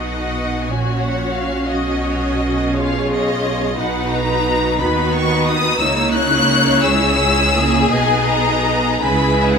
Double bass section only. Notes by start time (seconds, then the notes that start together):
Already playing: B1
0.68 A#1
1.70 B1
3.78 B1
4.80 D#2
5.81 C#2
7.91 B1
9.05 C#2